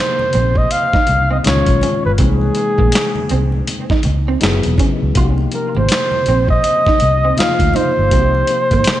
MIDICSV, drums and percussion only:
0, 0, Header, 1, 2, 480
1, 0, Start_track
1, 0, Key_signature, -3, "minor"
1, 0, Tempo, 740741
1, 1417, Time_signature, 4, 2, 24, 8
1, 5832, End_track
2, 0, Start_track
2, 0, Title_t, "Drums"
2, 124, Note_on_c, 9, 63, 67
2, 189, Note_off_c, 9, 63, 0
2, 213, Note_on_c, 9, 42, 66
2, 219, Note_on_c, 9, 64, 62
2, 277, Note_off_c, 9, 42, 0
2, 284, Note_off_c, 9, 64, 0
2, 359, Note_on_c, 9, 36, 79
2, 362, Note_on_c, 9, 64, 41
2, 424, Note_off_c, 9, 36, 0
2, 426, Note_off_c, 9, 64, 0
2, 458, Note_on_c, 9, 42, 84
2, 462, Note_on_c, 9, 63, 38
2, 523, Note_off_c, 9, 42, 0
2, 526, Note_off_c, 9, 63, 0
2, 606, Note_on_c, 9, 36, 102
2, 608, Note_on_c, 9, 62, 31
2, 612, Note_on_c, 9, 38, 32
2, 671, Note_off_c, 9, 36, 0
2, 673, Note_off_c, 9, 62, 0
2, 677, Note_off_c, 9, 38, 0
2, 692, Note_on_c, 9, 42, 58
2, 694, Note_on_c, 9, 63, 62
2, 757, Note_off_c, 9, 42, 0
2, 759, Note_off_c, 9, 63, 0
2, 936, Note_on_c, 9, 42, 72
2, 939, Note_on_c, 9, 63, 62
2, 953, Note_on_c, 9, 38, 89
2, 958, Note_on_c, 9, 39, 72
2, 1001, Note_off_c, 9, 42, 0
2, 1003, Note_off_c, 9, 63, 0
2, 1018, Note_off_c, 9, 38, 0
2, 1023, Note_off_c, 9, 39, 0
2, 1078, Note_on_c, 9, 36, 81
2, 1079, Note_on_c, 9, 42, 47
2, 1143, Note_off_c, 9, 36, 0
2, 1143, Note_off_c, 9, 42, 0
2, 1176, Note_on_c, 9, 63, 72
2, 1176, Note_on_c, 9, 64, 72
2, 1185, Note_on_c, 9, 42, 67
2, 1241, Note_off_c, 9, 63, 0
2, 1241, Note_off_c, 9, 64, 0
2, 1250, Note_off_c, 9, 42, 0
2, 1413, Note_on_c, 9, 42, 66
2, 1416, Note_on_c, 9, 36, 100
2, 1478, Note_off_c, 9, 42, 0
2, 1481, Note_off_c, 9, 36, 0
2, 1565, Note_on_c, 9, 62, 34
2, 1629, Note_off_c, 9, 62, 0
2, 1650, Note_on_c, 9, 42, 62
2, 1715, Note_off_c, 9, 42, 0
2, 1799, Note_on_c, 9, 63, 57
2, 1804, Note_on_c, 9, 36, 76
2, 1864, Note_off_c, 9, 63, 0
2, 1868, Note_off_c, 9, 36, 0
2, 1893, Note_on_c, 9, 42, 89
2, 1914, Note_on_c, 9, 38, 100
2, 1919, Note_on_c, 9, 39, 86
2, 1958, Note_off_c, 9, 42, 0
2, 1979, Note_off_c, 9, 38, 0
2, 1984, Note_off_c, 9, 39, 0
2, 2044, Note_on_c, 9, 62, 29
2, 2044, Note_on_c, 9, 63, 69
2, 2108, Note_off_c, 9, 62, 0
2, 2108, Note_off_c, 9, 63, 0
2, 2135, Note_on_c, 9, 42, 66
2, 2140, Note_on_c, 9, 64, 63
2, 2200, Note_off_c, 9, 42, 0
2, 2205, Note_off_c, 9, 64, 0
2, 2282, Note_on_c, 9, 64, 44
2, 2347, Note_off_c, 9, 64, 0
2, 2380, Note_on_c, 9, 62, 25
2, 2380, Note_on_c, 9, 63, 38
2, 2381, Note_on_c, 9, 42, 81
2, 2445, Note_off_c, 9, 62, 0
2, 2445, Note_off_c, 9, 63, 0
2, 2446, Note_off_c, 9, 42, 0
2, 2524, Note_on_c, 9, 62, 33
2, 2526, Note_on_c, 9, 36, 96
2, 2532, Note_on_c, 9, 38, 34
2, 2589, Note_off_c, 9, 62, 0
2, 2591, Note_off_c, 9, 36, 0
2, 2597, Note_off_c, 9, 38, 0
2, 2612, Note_on_c, 9, 42, 55
2, 2613, Note_on_c, 9, 63, 66
2, 2676, Note_off_c, 9, 42, 0
2, 2677, Note_off_c, 9, 63, 0
2, 2856, Note_on_c, 9, 42, 76
2, 2857, Note_on_c, 9, 62, 31
2, 2857, Note_on_c, 9, 63, 58
2, 2873, Note_on_c, 9, 38, 99
2, 2878, Note_on_c, 9, 39, 71
2, 2921, Note_off_c, 9, 42, 0
2, 2921, Note_off_c, 9, 62, 0
2, 2921, Note_off_c, 9, 63, 0
2, 2938, Note_off_c, 9, 38, 0
2, 2943, Note_off_c, 9, 39, 0
2, 3003, Note_on_c, 9, 42, 45
2, 3005, Note_on_c, 9, 62, 25
2, 3068, Note_off_c, 9, 42, 0
2, 3070, Note_off_c, 9, 62, 0
2, 3095, Note_on_c, 9, 63, 66
2, 3095, Note_on_c, 9, 64, 62
2, 3098, Note_on_c, 9, 36, 84
2, 3107, Note_on_c, 9, 42, 64
2, 3160, Note_off_c, 9, 63, 0
2, 3160, Note_off_c, 9, 64, 0
2, 3163, Note_off_c, 9, 36, 0
2, 3172, Note_off_c, 9, 42, 0
2, 3338, Note_on_c, 9, 42, 70
2, 3340, Note_on_c, 9, 36, 113
2, 3403, Note_off_c, 9, 42, 0
2, 3405, Note_off_c, 9, 36, 0
2, 3485, Note_on_c, 9, 62, 33
2, 3550, Note_off_c, 9, 62, 0
2, 3574, Note_on_c, 9, 42, 61
2, 3639, Note_off_c, 9, 42, 0
2, 3724, Note_on_c, 9, 63, 58
2, 3789, Note_off_c, 9, 63, 0
2, 3814, Note_on_c, 9, 42, 91
2, 3818, Note_on_c, 9, 62, 25
2, 3835, Note_on_c, 9, 38, 101
2, 3840, Note_on_c, 9, 39, 92
2, 3879, Note_off_c, 9, 42, 0
2, 3883, Note_off_c, 9, 62, 0
2, 3900, Note_off_c, 9, 38, 0
2, 3905, Note_off_c, 9, 39, 0
2, 3963, Note_on_c, 9, 62, 29
2, 3963, Note_on_c, 9, 63, 64
2, 4027, Note_off_c, 9, 62, 0
2, 4027, Note_off_c, 9, 63, 0
2, 4055, Note_on_c, 9, 42, 65
2, 4057, Note_on_c, 9, 64, 64
2, 4120, Note_off_c, 9, 42, 0
2, 4122, Note_off_c, 9, 64, 0
2, 4198, Note_on_c, 9, 64, 44
2, 4202, Note_on_c, 9, 36, 80
2, 4263, Note_off_c, 9, 64, 0
2, 4266, Note_off_c, 9, 36, 0
2, 4294, Note_on_c, 9, 62, 26
2, 4294, Note_on_c, 9, 63, 38
2, 4302, Note_on_c, 9, 42, 78
2, 4358, Note_off_c, 9, 62, 0
2, 4358, Note_off_c, 9, 63, 0
2, 4367, Note_off_c, 9, 42, 0
2, 4440, Note_on_c, 9, 62, 31
2, 4449, Note_on_c, 9, 36, 101
2, 4456, Note_on_c, 9, 38, 32
2, 4505, Note_off_c, 9, 62, 0
2, 4514, Note_off_c, 9, 36, 0
2, 4520, Note_off_c, 9, 38, 0
2, 4528, Note_on_c, 9, 63, 58
2, 4535, Note_on_c, 9, 42, 52
2, 4593, Note_off_c, 9, 63, 0
2, 4600, Note_off_c, 9, 42, 0
2, 4775, Note_on_c, 9, 62, 30
2, 4775, Note_on_c, 9, 63, 60
2, 4780, Note_on_c, 9, 42, 77
2, 4797, Note_on_c, 9, 38, 102
2, 4802, Note_on_c, 9, 39, 68
2, 4840, Note_off_c, 9, 62, 0
2, 4840, Note_off_c, 9, 63, 0
2, 4845, Note_off_c, 9, 42, 0
2, 4862, Note_off_c, 9, 38, 0
2, 4867, Note_off_c, 9, 39, 0
2, 4921, Note_on_c, 9, 36, 78
2, 4924, Note_on_c, 9, 42, 43
2, 4926, Note_on_c, 9, 62, 27
2, 4986, Note_off_c, 9, 36, 0
2, 4988, Note_off_c, 9, 42, 0
2, 4991, Note_off_c, 9, 62, 0
2, 5013, Note_on_c, 9, 63, 72
2, 5013, Note_on_c, 9, 64, 74
2, 5028, Note_on_c, 9, 42, 60
2, 5078, Note_off_c, 9, 63, 0
2, 5078, Note_off_c, 9, 64, 0
2, 5092, Note_off_c, 9, 42, 0
2, 5258, Note_on_c, 9, 42, 70
2, 5259, Note_on_c, 9, 36, 93
2, 5322, Note_off_c, 9, 42, 0
2, 5323, Note_off_c, 9, 36, 0
2, 5409, Note_on_c, 9, 62, 32
2, 5474, Note_off_c, 9, 62, 0
2, 5491, Note_on_c, 9, 42, 58
2, 5556, Note_off_c, 9, 42, 0
2, 5641, Note_on_c, 9, 63, 60
2, 5644, Note_on_c, 9, 42, 46
2, 5645, Note_on_c, 9, 36, 79
2, 5706, Note_off_c, 9, 63, 0
2, 5709, Note_off_c, 9, 42, 0
2, 5710, Note_off_c, 9, 36, 0
2, 5730, Note_on_c, 9, 42, 90
2, 5738, Note_on_c, 9, 62, 26
2, 5751, Note_on_c, 9, 38, 115
2, 5756, Note_on_c, 9, 39, 76
2, 5794, Note_off_c, 9, 42, 0
2, 5803, Note_off_c, 9, 62, 0
2, 5815, Note_off_c, 9, 38, 0
2, 5821, Note_off_c, 9, 39, 0
2, 5832, End_track
0, 0, End_of_file